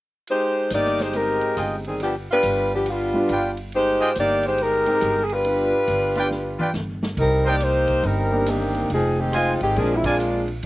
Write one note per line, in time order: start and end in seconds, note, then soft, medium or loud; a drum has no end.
0.27 0.69 G#3 medium
0.27 0.69 D#4 medium
0.27 0.70 G4 medium
0.27 0.69 C5 medium
0.27 ride soft
0.70 1.41 G1 medium
0.70 1.00 A#3 medium
0.70 1.00 D#4 medium
0.70 1.00 G4 medium
0.70 1.00 D5 medium
0.70 hi-hat pedal soft
0.70 ride medium
0.85 snare soft
0.99 1.15 G#3 medium
0.99 1.15 D#4 medium
0.99 1.15 G4 medium
0.99 1.15 C5 medium
0.99 snare soft
0.99 ride soft
1.13 1.79 G#3 soft
1.13 1.58 G#3 medium
1.13 1.80 C4 soft
1.13 1.80 D#4 soft
1.13 1.58 D#4 medium
1.13 1.80 G4 soft
1.13 1.58 G4 medium
1.13 1.58 A#4 loud
1.13 ride soft
1.41 ride soft
1.57 2.27 G1 medium
1.57 1.76 F4 medium
1.57 1.76 G#4 medium
1.57 1.76 D#5 medium
1.57 1.76 G5 medium
1.57 hi-hat pedal soft
1.57 ride medium
1.84 2.00 D#3 medium
1.84 2.00 G3 medium
1.84 2.00 C4 medium
1.84 2.00 G#4 medium
1.84 ride soft
2.00 2.15 F3 medium
2.00 2.14 B3 medium
2.00 2.14 D4 medium
2.00 2.14 G4 medium
2.00 ride medium
2.31 2.70 G3 medium
2.31 2.70 D4 medium
2.31 2.70 F4 medium
2.31 2.70 B4 medium
2.43 3.13 G1 medium
2.43 hi-hat pedal medium
2.43 ride medium
2.74 2.87 F3 medium
2.74 2.87 B3 medium
2.74 2.87 D4 medium
2.74 2.87 G4 medium
2.86 3.59 G3 medium
2.86 3.59 B3 medium
2.86 3.59 D4 medium
2.86 3.59 F4 medium
2.86 ride medium
3.13 3.28 G3 medium
3.13 3.28 B3 medium
3.13 3.28 D4 soft
3.13 3.28 F4 medium
3.29 4.00 G1 medium
3.29 3.49 F4 medium
3.29 3.49 B4 medium
3.29 3.49 D5 medium
3.29 3.49 G5 medium
3.29 hi-hat pedal soft
3.29 ride medium
3.57 ride soft
3.72 4.14 G#3 medium
3.72 4.14 D#4 medium
3.72 4.14 G4 medium
3.72 4.14 C5 medium
3.72 ride soft
4.00 4.11 F4 medium
4.00 4.11 G#4 medium
4.00 4.11 D#5 medium
4.00 4.11 G5 medium
4.15 4.86 G1 medium
4.15 4.43 A#3 medium
4.15 4.43 D#4 medium
4.15 4.43 G4 medium
4.15 4.43 D5 medium
4.15 hi-hat pedal medium
4.15 ride medium
4.43 4.60 G#3 medium
4.43 4.60 D#4 medium
4.43 4.60 G4 medium
4.43 4.60 C5 medium
4.43 ride soft
4.58 5.22 G#3 medium
4.58 5.22 D#4 medium
4.58 5.22 G4 medium
4.58 5.22 A#4 loud
4.58 ride soft
4.86 5.00 G#3 medium
4.86 5.01 C4 medium
4.86 5.01 D#4 soft
4.86 5.01 G4 medium
4.86 ride soft
5.01 5.72 G1 medium
5.01 hi-hat pedal medium
5.01 ride medium
5.23 5.31 G#4 medium
5.29 6.76 G3 medium
5.29 6.76 D4 medium
5.29 6.76 F4 medium
5.29 6.76 B4 medium
5.29 ride soft
5.44 5.70 B3 soft
5.44 5.70 D4 soft
5.44 5.71 F4 soft
5.44 5.71 G4 soft
5.44 ride medium
5.87 6.58 G1 medium
5.87 hi-hat pedal soft
5.87 ride medium
6.15 6.30 B3 medium
6.15 6.30 D4 soft
6.15 6.26 F4 medium
6.15 6.30 F4 soft
6.15 6.30 G4 medium
6.15 6.26 B4 medium
6.15 6.26 D5 medium
6.15 6.26 G5 medium
6.15 ride soft
6.31 snare soft
6.59 6.69 F4 medium
6.59 6.69 B4 medium
6.59 6.69 D5 medium
6.59 6.69 G5 medium
6.59 high tom medium
6.74 7.14 G1 medium
6.74 snare medium
6.74 hi-hat pedal soft
7.03 snare medium
7.17 8.00 C2 medium
7.17 7.44 G3 medium
7.17 7.44 C4 medium
7.17 7.44 D#4 medium
7.17 7.44 A#4 medium
7.17 kick medium
7.17 ride medium
7.45 7.61 A#3 medium
7.45 7.56 D#4 medium
7.45 7.62 D#4 medium
7.45 7.61 G4 medium
7.45 7.56 A#4 medium
7.45 7.55 C5 medium
7.45 7.62 D5 medium
7.45 7.56 G5 medium
7.60 8.05 A#3 medium
7.60 8.04 D#4 medium
7.60 8.05 G4 medium
7.60 8.05 C5 medium
7.60 hi-hat pedal soft
7.60 ride medium
7.88 kick soft
7.88 ride soft
8.03 8.86 G1 medium
8.03 8.48 G3 medium
8.03 8.47 C4 medium
8.03 8.48 D#4 medium
8.03 8.48 A#4 medium
8.03 ride soft
8.30 8.86 A#3 medium
8.30 8.87 D4 medium
8.30 8.87 D#4 soft
8.30 8.87 G4 medium
8.46 8.91 D#3 medium
8.46 8.91 A#3 medium
8.46 8.91 C4 medium
8.46 8.91 G4 medium
8.46 hi-hat pedal medium
8.46 ride medium
8.74 ride soft
8.90 9.57 F1 medium
8.90 9.18 F3 medium
8.90 9.18 C4 medium
8.90 9.18 D#4 medium
8.90 9.18 G#4 medium
8.90 ride medium
9.20 9.34 D#3 medium
9.20 9.34 G#3 medium
9.20 9.34 C4 medium
9.20 9.34 G4 medium
9.33 9.61 G#3 medium
9.33 9.61 C4 medium
9.33 9.62 D#4 medium
9.33 9.52 F4 medium
9.33 9.62 F4 medium
9.33 9.52 C5 medium
9.33 9.52 D#5 medium
9.33 9.52 G#5 medium
9.33 hi-hat pedal medium
9.33 ride medium
9.60 9.75 G#1 medium
9.60 9.76 D#3 medium
9.60 9.76 G#3 medium
9.60 9.76 C4 medium
9.60 9.76 G4 medium
9.60 ride soft
9.76 10.59 A#1 medium
9.76 9.95 F3 medium
9.76 10.42 G#3 medium
9.76 9.96 A#3 medium
9.76 10.42 C4 medium
9.76 9.95 D4 medium
9.76 10.42 D4 soft
9.76 10.43 F4 medium
9.76 9.96 G#4 medium
9.76 ride soft
9.96 10.04 E4 medium
10.04 10.48 G#3 medium
10.04 10.48 A#3 medium
10.04 10.48 D4 medium
10.04 10.15 F4 medium
10.04 10.48 F4 medium
10.04 10.15 A#4 medium
10.04 10.15 D5 medium
10.04 10.15 G#5 medium
10.04 kick medium
10.04 ride medium
10.19 hi-hat pedal medium
10.48 ride soft
10.63 ride medium